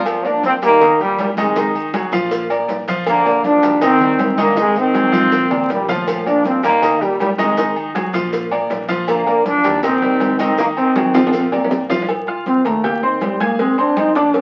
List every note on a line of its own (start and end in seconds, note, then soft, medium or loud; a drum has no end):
0.00 0.25 A#2 medium
0.00 0.24 F3 medium
0.06 cowbell loud
0.06 high conga soft
0.06 low agogo loud
0.06 maracas medium
0.25 0.44 F3 medium
0.25 0.55 A#3 medium
0.25 0.44 D4 loud
0.25 0.56 A#4 medium
0.25 0.56 D5 medium
0.25 high conga soft
0.25 low agogo medium
0.25 maracas soft
0.43 0.54 F3 medium
0.43 0.53 C4 loud
0.43 cowbell medium
0.43 high conga medium
0.43 low timbale medium
0.43 maracas soft
0.62 1.14 D#2 loud
0.62 0.99 D#3 medium
0.62 0.78 G3 medium
0.62 0.98 A#3 loud
0.62 0.78 G4 medium
0.62 0.78 A#4 medium
0.62 cowbell medium
0.62 high conga soft
0.62 low agogo medium
0.62 maracas medium
0.81 0.96 D#3 medium
0.81 0.97 D#4 medium
0.81 0.97 D#5 medium
0.81 cowbell loud
0.81 high conga soft
0.81 low conga medium
0.81 low agogo loud
0.81 maracas medium
1.00 1.19 A#2 medium
1.00 1.31 G3 medium
1.00 1.19 G3 loud
1.00 1.32 G4 medium
1.00 1.32 A#4 medium
1.00 high conga soft
1.00 maracas soft
1.18 2.07 G#1 medium
1.18 1.29 A#2 medium
1.18 1.29 G3 medium
1.18 cowbell medium
1.18 high conga medium
1.18 low timbale medium
1.18 low agogo medium
1.18 maracas soft
1.37 1.73 C3 medium
1.37 1.53 D#3 medium
1.37 1.74 G#3 medium
1.37 1.53 D#4 medium
1.37 1.53 D#5 medium
1.37 cowbell medium
1.37 high conga loud
1.37 low agogo loud
1.37 maracas medium
1.55 1.87 D#3 medium
1.55 1.87 D#4 medium
1.55 1.87 D#5 medium
1.55 cowbell loud
1.55 high conga soft
1.55 maracas medium
1.74 high conga soft
1.74 low agogo medium
1.74 maracas soft
1.94 2.09 F#3 medium
1.94 2.10 F#4 medium
1.94 2.10 G#4 medium
1.94 cowbell medium
1.94 high conga loud
1.94 low timbale medium
1.94 low agogo loud
1.94 maracas soft
2.12 2.65 A#1 loud
2.12 2.43 F3 medium
2.12 2.44 F4 medium
2.12 2.44 F5 loud
2.12 cowbell medium
2.12 low agogo medium
2.12 maracas medium
2.31 cowbell loud
2.31 high conga soft
2.31 maracas loud
2.50 2.81 A#3 medium
2.50 2.81 A#4 medium
2.50 2.81 D5 medium
2.50 high conga soft
2.50 low agogo loud
2.50 maracas soft
2.68 3.57 A#1 medium
2.68 cowbell medium
2.68 high conga soft
2.68 low timbale medium
2.68 maracas soft
2.88 3.19 F3 loud
2.88 3.19 F4 loud
2.88 3.19 F5 loud
2.88 cowbell medium
2.88 high conga soft
2.88 maracas medium
3.06 3.42 D3 medium
3.06 3.42 A#3 loud
3.06 cowbell loud
3.06 high conga soft
3.06 low agogo loud
3.06 maracas medium
3.25 3.56 A#3 medium
3.25 3.57 A#4 medium
3.25 3.57 D5 medium
3.25 high conga soft
3.25 low agogo medium
3.25 maracas soft
3.44 3.80 F3 loud
3.44 3.80 D4 loud
3.44 cowbell medium
3.44 high conga medium
3.44 low timbale medium
3.44 maracas soft
3.62 4.15 D#2 loud
3.62 3.78 G3 medium
3.62 3.79 G4 medium
3.62 3.79 A#4 medium
3.62 cowbell medium
3.62 high conga soft
3.62 low agogo medium
3.62 maracas medium
3.81 3.97 D#3 medium
3.81 4.35 D#3 medium
3.81 4.35 C4 loud
3.81 3.97 D#4 loud
3.81 3.97 D#5 medium
3.81 cowbell loud
3.81 high conga soft
3.81 low conga medium
3.81 low agogo loud
3.81 maracas medium
4.00 4.31 G3 medium
4.00 4.32 G4 medium
4.00 4.32 A#4 medium
4.00 high conga soft
4.00 low conga medium
4.00 maracas soft
4.19 5.07 G#1 loud
4.19 cowbell medium
4.19 high conga medium
4.19 low timbale loud
4.19 low agogo loud
4.19 maracas soft
4.38 4.58 D3 medium
4.38 4.53 D#3 loud
4.38 4.58 A#3 medium
4.38 4.53 D#4 loud
4.38 4.54 D#5 loud
4.38 cowbell medium
4.38 high conga medium
4.38 low agogo loud
4.38 maracas medium
4.56 4.75 C3 medium
4.56 4.87 D#3 medium
4.56 4.75 G#3 loud
4.56 4.87 D#4 medium
4.56 4.88 D#5 medium
4.56 cowbell loud
4.56 high conga soft
4.56 maracas medium
4.76 5.33 D#3 medium
4.76 5.70 C4 loud
4.76 high conga soft
4.76 low agogo medium
4.76 maracas soft
4.94 5.09 F#3 medium
4.94 5.10 F#4 medium
4.94 5.10 G#4 medium
4.94 cowbell medium
4.94 high conga loud
4.94 low timbale medium
4.94 low agogo loud
4.94 maracas soft
5.12 5.65 A#1 loud
5.12 5.43 F3 medium
5.12 5.44 F4 medium
5.12 5.44 F5 medium
5.12 cowbell medium
5.12 high conga loud
5.12 low agogo medium
5.12 maracas medium
5.32 cowbell loud
5.32 low conga medium
5.32 maracas medium
5.50 5.81 A#3 medium
5.50 5.82 A#4 medium
5.50 5.82 D5 medium
5.50 low conga loud
5.50 low agogo loud
5.50 maracas soft
5.69 6.58 A#1 medium
5.69 5.88 A#2 medium
5.69 5.88 G3 medium
5.69 cowbell medium
5.69 low timbale medium
5.69 maracas soft
5.88 6.27 A2 medium
5.88 6.19 F3 loud
5.88 6.27 F3 medium
5.88 6.20 F4 medium
5.88 6.20 F5 loud
5.88 cowbell medium
5.88 low conga medium
5.88 maracas medium
6.07 cowbell loud
6.07 high conga soft
6.07 low agogo loud
6.07 maracas loud
6.25 6.45 F3 medium
6.25 6.57 A#3 medium
6.25 6.45 D4 loud
6.25 6.57 A#4 medium
6.25 6.57 D5 medium
6.25 high conga soft
6.25 low agogo medium
6.25 maracas soft
6.44 6.63 F3 medium
6.44 6.63 C4 loud
6.44 cowbell medium
6.44 high conga medium
6.44 low timbale medium
6.44 maracas soft
6.63 7.16 D#2 loud
6.63 6.99 D#3 medium
6.63 6.79 G3 medium
6.63 6.99 A#3 loud
6.63 6.79 G4 medium
6.63 6.79 A#4 medium
6.63 cowbell medium
6.63 high conga soft
6.63 low agogo medium
6.63 maracas medium
6.82 6.98 D#3 medium
6.82 6.98 D#4 medium
6.82 6.98 D#5 medium
6.82 cowbell loud
6.82 high conga soft
6.82 low conga medium
6.82 low agogo loud
6.82 maracas medium
7.01 7.20 A#2 medium
7.01 7.32 G3 medium
7.01 7.19 G3 medium
7.01 7.32 G4 medium
7.01 7.32 A#4 medium
7.01 high conga soft
7.01 maracas soft
7.19 8.08 G#1 medium
7.19 7.29 A#2 medium
7.19 7.29 G3 medium
7.19 cowbell medium
7.19 high conga medium
7.19 low timbale medium
7.19 low agogo medium
7.19 maracas soft
7.38 7.74 C3 medium
7.38 7.54 D#3 loud
7.38 7.74 G#3 medium
7.38 7.54 D#4 loud
7.38 7.54 D#5 loud
7.38 cowbell medium
7.38 high conga medium
7.38 low agogo loud
7.38 maracas medium
7.57 7.88 D#3 medium
7.57 7.89 D#4 medium
7.57 7.89 D#5 medium
7.57 cowbell loud
7.57 high conga soft
7.57 maracas medium
7.76 high conga soft
7.76 low agogo medium
7.76 maracas soft
7.95 8.10 F#3 medium
7.95 8.10 F#4 medium
7.95 8.11 G#4 medium
7.95 cowbell medium
7.95 high conga loud
7.95 low timbale medium
7.95 low agogo loud
7.95 maracas soft
8.13 8.66 A#1 loud
8.13 8.45 F3 medium
8.13 8.45 F4 medium
8.13 8.45 F5 medium
8.13 cowbell medium
8.13 low agogo medium
8.13 maracas medium
8.33 cowbell loud
8.33 high conga soft
8.33 maracas medium
8.51 8.82 A#3 medium
8.51 8.83 A#4 medium
8.51 8.83 D5 medium
8.51 high conga soft
8.51 low agogo loud
8.51 maracas soft
8.70 9.58 A#1 medium
8.70 cowbell medium
8.70 high conga soft
8.70 low timbale loud
8.70 maracas soft
8.88 9.20 F3 loud
8.88 9.20 F4 medium
8.88 9.20 F5 medium
8.88 cowbell medium
8.88 high conga soft
8.88 maracas medium
9.08 9.44 D3 medium
9.08 9.43 A#3 loud
9.08 cowbell loud
9.08 high conga soft
9.08 low agogo loud
9.08 maracas medium
9.26 9.58 A#3 medium
9.26 9.58 A#4 medium
9.26 9.58 D5 medium
9.26 high conga soft
9.26 low agogo medium
9.26 maracas soft
9.45 9.84 F3 medium
9.45 9.83 D4 loud
9.45 cowbell medium
9.45 high conga medium
9.45 low timbale medium
9.45 maracas soft
9.64 10.17 D#2 loud
9.64 9.80 G3 medium
9.64 9.80 G4 medium
9.64 9.80 A#4 medium
9.64 cowbell medium
9.64 high conga soft
9.64 low agogo medium
9.64 maracas medium
9.83 9.99 D#3 medium
9.83 10.36 D#3 medium
9.83 10.36 C4 loud
9.83 9.99 D#4 medium
9.83 9.99 D#5 medium
9.83 cowbell loud
9.83 high conga soft
9.83 low conga medium
9.83 low agogo loud
9.83 maracas medium
10.02 10.33 G3 medium
10.02 10.33 G4 medium
10.02 10.33 A#4 medium
10.02 high conga soft
10.02 low conga medium
10.02 maracas soft
10.20 11.08 G#1 medium
10.20 cowbell medium
10.20 high conga medium
10.20 low timbale medium
10.20 low agogo medium
10.20 maracas soft
10.39 10.55 D#3 medium
10.39 10.58 D#3 medium
10.39 10.57 C4 medium
10.39 10.55 D#4 medium
10.39 10.55 D#5 loud
10.39 cowbell medium
10.39 high conga medium
10.39 low agogo loud
10.39 maracas medium
10.58 10.89 D#3 medium
10.58 10.69 D#3 medium
10.58 10.67 A#3 medium
10.58 10.90 D#4 medium
10.58 10.90 D#5 medium
10.58 cowbell loud
10.58 high conga soft
10.58 maracas medium
10.77 11.31 D#3 medium
10.77 11.86 C4 medium
10.77 high conga soft
10.77 low agogo medium
10.77 maracas soft
10.96 11.12 F#3 medium
10.96 11.12 F#4 medium
10.96 11.12 G#4 medium
10.96 cowbell medium
10.96 high bongo loud
10.96 high conga loud
10.96 low timbale medium
10.96 low agogo loud
10.96 maracas soft
11.14 11.67 A#1 loud
11.14 11.46 F3 loud
11.14 11.45 F4 medium
11.14 11.46 F5 medium
11.14 cowbell medium
11.14 high bongo medium
11.14 high timbale loud
11.14 low agogo medium
11.14 maracas medium
11.27 high timbale loud
11.33 cowbell loud
11.33 high conga soft
11.33 maracas medium
11.40 high timbale medium
11.52 11.83 A#3 medium
11.52 11.83 A#4 medium
11.52 11.83 D5 medium
11.52 low bongo medium
11.52 high conga soft
11.52 low agogo loud
11.52 maracas soft
11.64 low timbale loud
11.70 12.59 A#1 medium
11.70 cowbell medium
11.70 low bongo loud
11.70 high conga soft
11.70 maracas soft
11.89 12.05 F3 medium
11.89 12.05 F4 loud
11.89 12.05 F5 medium
11.89 cowbell medium
11.89 low bongo loud
11.89 high conga soft
11.89 low timbale medium
11.89 maracas medium
12.02 low timbale medium
12.09 cowbell loud
12.09 high conga soft
12.09 low agogo loud
12.27 12.58 F4 medium
12.27 12.59 F5 medium
12.27 12.59 F6 medium
12.27 high conga soft
12.27 low agogo medium
12.46 12.68 C4 medium
12.46 cowbell medium
12.46 high conga medium
12.46 low timbale medium
12.65 13.17 D#2 loud
12.65 12.86 A3 medium
12.65 12.80 A#3 medium
12.65 12.80 A#4 medium
12.65 12.81 A#5 medium
12.65 cowbell medium
12.65 high conga soft
12.65 low agogo medium
12.84 13.03 A#3 medium
12.84 12.99 G4 medium
12.84 12.99 G5 medium
12.84 13.00 G6 medium
12.84 cowbell loud
12.84 high conga soft
12.84 low conga medium
12.84 low agogo loud
13.03 13.25 D#3 medium
13.03 13.34 C4 medium
13.03 13.34 C5 medium
13.03 13.34 C6 medium
13.03 high conga soft
13.21 14.09 G#1 medium
13.21 13.41 G3 medium
13.21 cowbell medium
13.21 high conga medium
13.21 low timbale medium
13.21 low agogo medium
13.40 13.62 A#3 medium
13.40 13.56 G#4 medium
13.40 13.56 G#5 medium
13.40 13.56 G#6 medium
13.40 cowbell medium
13.40 high conga medium
13.40 low agogo loud
13.59 13.74 G#3 medium
13.59 13.78 C4 medium
13.59 13.75 G#4 medium
13.59 13.75 G#5 medium
13.59 cowbell loud
13.59 high conga soft
13.78 14.09 C4 medium
13.78 13.99 D4 loud
13.78 14.09 C5 medium
13.78 14.09 C6 medium
13.78 high conga soft
13.78 low agogo medium
13.97 14.15 D#4 loud
13.97 cowbell medium
13.97 high conga loud
13.97 low timbale medium
13.97 low agogo loud
14.15 14.41 A#1 loud
14.15 14.41 D4 medium
14.15 14.41 D5 medium
14.15 14.41 D6 medium
14.15 cowbell medium
14.15 low agogo medium
14.34 cowbell loud
14.34 high conga soft